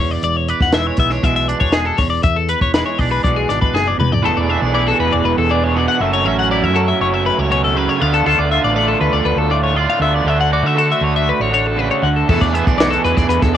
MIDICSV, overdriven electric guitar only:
0, 0, Header, 1, 2, 480
1, 0, Start_track
1, 0, Tempo, 502092
1, 214, Time_signature, 4, 2, 24, 8
1, 12974, End_track
2, 0, Start_track
2, 0, Title_t, "Overdriven electric guitar"
2, 0, Program_c, 0, 29
2, 4042, Note_on_c, 0, 52, 106
2, 4047, Note_on_c, 0, 59, 95
2, 4056, Note_on_c, 0, 62, 100
2, 4068, Note_on_c, 0, 68, 93
2, 4269, Note_off_c, 0, 68, 0
2, 4281, Note_on_c, 0, 68, 72
2, 4284, Note_off_c, 0, 62, 0
2, 4295, Note_off_c, 0, 59, 0
2, 4296, Note_on_c, 0, 62, 66
2, 4306, Note_on_c, 0, 59, 58
2, 4520, Note_off_c, 0, 52, 0
2, 4521, Note_off_c, 0, 59, 0
2, 4524, Note_on_c, 0, 52, 83
2, 4532, Note_on_c, 0, 59, 89
2, 4534, Note_off_c, 0, 62, 0
2, 4535, Note_off_c, 0, 68, 0
2, 4545, Note_on_c, 0, 62, 70
2, 4547, Note_on_c, 0, 68, 80
2, 5239, Note_off_c, 0, 68, 0
2, 5247, Note_off_c, 0, 62, 0
2, 5250, Note_on_c, 0, 68, 69
2, 5259, Note_on_c, 0, 62, 67
2, 5264, Note_off_c, 0, 59, 0
2, 5275, Note_on_c, 0, 59, 60
2, 5473, Note_off_c, 0, 52, 0
2, 5484, Note_off_c, 0, 59, 0
2, 5485, Note_on_c, 0, 52, 97
2, 5494, Note_off_c, 0, 62, 0
2, 5495, Note_on_c, 0, 59, 101
2, 5498, Note_off_c, 0, 68, 0
2, 5505, Note_on_c, 0, 62, 111
2, 5509, Note_on_c, 0, 68, 116
2, 5717, Note_off_c, 0, 52, 0
2, 5722, Note_off_c, 0, 59, 0
2, 5722, Note_off_c, 0, 68, 0
2, 5726, Note_on_c, 0, 66, 86
2, 5727, Note_off_c, 0, 62, 0
2, 5734, Note_on_c, 0, 61, 78
2, 5739, Note_on_c, 0, 57, 85
2, 5750, Note_on_c, 0, 54, 79
2, 5955, Note_off_c, 0, 54, 0
2, 5966, Note_on_c, 0, 54, 92
2, 5969, Note_off_c, 0, 61, 0
2, 5970, Note_off_c, 0, 57, 0
2, 5974, Note_on_c, 0, 57, 84
2, 5977, Note_off_c, 0, 66, 0
2, 5980, Note_on_c, 0, 61, 107
2, 5988, Note_on_c, 0, 66, 104
2, 6190, Note_off_c, 0, 66, 0
2, 6202, Note_on_c, 0, 66, 82
2, 6204, Note_off_c, 0, 61, 0
2, 6216, Note_on_c, 0, 61, 67
2, 6223, Note_off_c, 0, 57, 0
2, 6227, Note_on_c, 0, 57, 67
2, 6437, Note_off_c, 0, 54, 0
2, 6449, Note_on_c, 0, 54, 81
2, 6459, Note_off_c, 0, 57, 0
2, 6460, Note_off_c, 0, 61, 0
2, 6463, Note_on_c, 0, 57, 79
2, 6465, Note_off_c, 0, 66, 0
2, 6471, Note_on_c, 0, 61, 75
2, 6477, Note_on_c, 0, 66, 91
2, 7160, Note_off_c, 0, 66, 0
2, 7167, Note_off_c, 0, 61, 0
2, 7172, Note_on_c, 0, 66, 67
2, 7178, Note_on_c, 0, 61, 66
2, 7190, Note_off_c, 0, 57, 0
2, 7194, Note_on_c, 0, 57, 60
2, 7392, Note_off_c, 0, 54, 0
2, 7403, Note_on_c, 0, 54, 90
2, 7406, Note_off_c, 0, 61, 0
2, 7408, Note_off_c, 0, 57, 0
2, 7411, Note_on_c, 0, 57, 98
2, 7415, Note_off_c, 0, 66, 0
2, 7417, Note_on_c, 0, 61, 109
2, 7426, Note_on_c, 0, 66, 112
2, 7632, Note_off_c, 0, 66, 0
2, 7635, Note_off_c, 0, 54, 0
2, 7636, Note_on_c, 0, 65, 99
2, 7642, Note_off_c, 0, 61, 0
2, 7647, Note_off_c, 0, 57, 0
2, 7650, Note_on_c, 0, 62, 82
2, 7651, Note_on_c, 0, 57, 78
2, 7660, Note_on_c, 0, 50, 75
2, 7885, Note_off_c, 0, 50, 0
2, 7889, Note_on_c, 0, 50, 100
2, 7893, Note_off_c, 0, 57, 0
2, 7897, Note_on_c, 0, 57, 92
2, 7900, Note_off_c, 0, 65, 0
2, 7903, Note_off_c, 0, 62, 0
2, 7907, Note_on_c, 0, 62, 97
2, 7911, Note_on_c, 0, 65, 93
2, 8119, Note_off_c, 0, 65, 0
2, 8131, Note_on_c, 0, 65, 77
2, 8135, Note_off_c, 0, 62, 0
2, 8139, Note_on_c, 0, 62, 67
2, 8147, Note_off_c, 0, 57, 0
2, 8151, Note_on_c, 0, 57, 53
2, 8363, Note_off_c, 0, 50, 0
2, 8367, Note_on_c, 0, 50, 85
2, 8369, Note_off_c, 0, 57, 0
2, 8373, Note_on_c, 0, 57, 76
2, 8376, Note_off_c, 0, 65, 0
2, 8377, Note_off_c, 0, 62, 0
2, 8381, Note_on_c, 0, 62, 91
2, 8387, Note_on_c, 0, 65, 90
2, 9069, Note_off_c, 0, 65, 0
2, 9081, Note_on_c, 0, 65, 73
2, 9087, Note_off_c, 0, 62, 0
2, 9091, Note_on_c, 0, 62, 64
2, 9103, Note_off_c, 0, 57, 0
2, 9107, Note_on_c, 0, 57, 54
2, 9300, Note_off_c, 0, 50, 0
2, 9311, Note_on_c, 0, 50, 95
2, 9314, Note_off_c, 0, 57, 0
2, 9318, Note_on_c, 0, 57, 110
2, 9321, Note_off_c, 0, 62, 0
2, 9323, Note_off_c, 0, 65, 0
2, 9325, Note_on_c, 0, 62, 104
2, 9335, Note_on_c, 0, 65, 113
2, 9549, Note_off_c, 0, 65, 0
2, 9560, Note_on_c, 0, 65, 82
2, 9569, Note_off_c, 0, 62, 0
2, 9572, Note_on_c, 0, 62, 67
2, 9577, Note_off_c, 0, 57, 0
2, 9581, Note_on_c, 0, 57, 64
2, 9781, Note_off_c, 0, 50, 0
2, 9793, Note_off_c, 0, 65, 0
2, 9793, Note_on_c, 0, 50, 93
2, 9804, Note_off_c, 0, 57, 0
2, 9808, Note_off_c, 0, 62, 0
2, 9808, Note_on_c, 0, 57, 104
2, 9812, Note_on_c, 0, 62, 96
2, 9813, Note_on_c, 0, 66, 109
2, 10034, Note_off_c, 0, 66, 0
2, 10037, Note_on_c, 0, 66, 78
2, 10049, Note_off_c, 0, 62, 0
2, 10053, Note_on_c, 0, 62, 70
2, 10054, Note_off_c, 0, 57, 0
2, 10058, Note_on_c, 0, 57, 58
2, 10264, Note_off_c, 0, 50, 0
2, 10276, Note_on_c, 0, 50, 72
2, 10277, Note_off_c, 0, 57, 0
2, 10280, Note_on_c, 0, 57, 78
2, 10287, Note_off_c, 0, 62, 0
2, 10291, Note_on_c, 0, 62, 88
2, 10296, Note_off_c, 0, 66, 0
2, 10300, Note_on_c, 0, 66, 84
2, 10994, Note_off_c, 0, 66, 0
2, 10998, Note_on_c, 0, 66, 73
2, 11004, Note_off_c, 0, 62, 0
2, 11016, Note_on_c, 0, 62, 74
2, 11017, Note_off_c, 0, 57, 0
2, 11021, Note_on_c, 0, 57, 57
2, 11241, Note_off_c, 0, 50, 0
2, 11252, Note_on_c, 0, 50, 95
2, 11261, Note_off_c, 0, 57, 0
2, 11265, Note_off_c, 0, 62, 0
2, 11265, Note_on_c, 0, 57, 97
2, 11274, Note_off_c, 0, 66, 0
2, 11276, Note_on_c, 0, 62, 94
2, 11277, Note_on_c, 0, 66, 106
2, 11500, Note_off_c, 0, 62, 0
2, 11502, Note_off_c, 0, 66, 0
2, 11506, Note_on_c, 0, 66, 80
2, 11512, Note_on_c, 0, 62, 67
2, 11522, Note_off_c, 0, 57, 0
2, 11525, Note_on_c, 0, 57, 60
2, 11720, Note_off_c, 0, 50, 0
2, 11729, Note_off_c, 0, 62, 0
2, 11748, Note_on_c, 0, 52, 88
2, 11752, Note_off_c, 0, 57, 0
2, 11756, Note_on_c, 0, 59, 87
2, 11757, Note_on_c, 0, 62, 94
2, 11759, Note_off_c, 0, 66, 0
2, 11763, Note_on_c, 0, 68, 105
2, 11969, Note_off_c, 0, 68, 0
2, 11980, Note_on_c, 0, 68, 78
2, 11982, Note_off_c, 0, 62, 0
2, 11992, Note_off_c, 0, 59, 0
2, 11994, Note_on_c, 0, 62, 62
2, 12004, Note_on_c, 0, 59, 55
2, 12213, Note_off_c, 0, 52, 0
2, 12215, Note_off_c, 0, 59, 0
2, 12217, Note_on_c, 0, 52, 67
2, 12223, Note_off_c, 0, 62, 0
2, 12225, Note_off_c, 0, 68, 0
2, 12227, Note_on_c, 0, 59, 83
2, 12234, Note_on_c, 0, 62, 84
2, 12236, Note_on_c, 0, 68, 88
2, 12935, Note_off_c, 0, 68, 0
2, 12950, Note_off_c, 0, 62, 0
2, 12954, Note_off_c, 0, 59, 0
2, 12974, Note_off_c, 0, 52, 0
2, 12974, End_track
0, 0, End_of_file